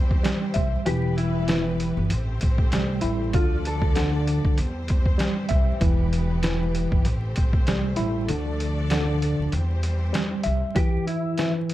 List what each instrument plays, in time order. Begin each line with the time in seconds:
Already playing: upright bass E2, string section E3 G3 C4 G4 C5
0.11 kick
0.23 tine electric piano G3, snare, closed hi-hat
0.54 upright bass C2, tine electric piano E5, kick, closed hi-hat
0.86 upright bass E1, tine electric piano E3, string section E3 G3 B3 G4 B4, clean electric guitar G4, closed hi-hat
1.17 clean electric guitar E4, closed hi-hat
1.48 tine electric piano E3, snare, closed hi-hat
1.80 closed hi-hat
1.97 upright bass G1
2.10 upright bass A1, string section E3 A3 C4 G4 C5, closed hi-hat
2.41 upright bass A1, kick, closed hi-hat
2.58 kick
2.72 upright bass C2, tine electric piano G3, snare, closed hi-hat
3.01 upright bass A1, tine electric piano E4, closed hi-hat
3.33 upright bass D2, tine electric piano D3, string section F3 D4 A4 D5, clean electric guitar F4, kick, closed hi-hat
3.65 clean electric guitar A4, closed hi-hat
3.82 kick
3.95 tine electric piano D3, snare, closed hi-hat
4.27 closed hi-hat
4.45 upright bass D2, kick
4.57 upright bass E2, string section E3 G3 C4 G4 C5, closed hi-hat
4.88 kick, closed hi-hat
5.06 kick
5.18 tine electric piano G3, snare, closed hi-hat
5.49 upright bass C2, tine electric piano E5, kick, closed hi-hat
5.81 upright bass E1, tine electric piano E3, string section B3 B4, kick, closed hi-hat
6.13 closed hi-hat
6.43 tine electric piano E3, snare, closed hi-hat
6.75 closed hi-hat
6.92 upright bass G1, kick
7.05 upright bass A1, string section A3 C4 C5, closed hi-hat
7.36 upright bass A1, kick, closed hi-hat
7.53 kick
7.67 upright bass C2, tine electric piano G3, snare, closed hi-hat
7.96 upright bass A1, tine electric piano E4, closed hi-hat
8.28 upright bass D2, tine electric piano D3, string section F3 D4 A4 D5, closed hi-hat
8.60 closed hi-hat
8.90 tine electric piano D3, snare, closed hi-hat
9.22 closed hi-hat
9.39 upright bass D2
9.52 upright bass E2, string section E3 G3 C4 G4 C5, closed hi-hat
9.83 closed hi-hat
10.13 tine electric piano G3, snare, closed hi-hat
10.43 upright bass C2, tine electric piano E5, closed hi-hat
10.76 tine electric piano E3, clean electric guitar G4, kick, closed hi-hat
11.07 clean electric guitar E4, closed hi-hat
11.38 tine electric piano E3, snare, closed hi-hat
11.69 closed hi-hat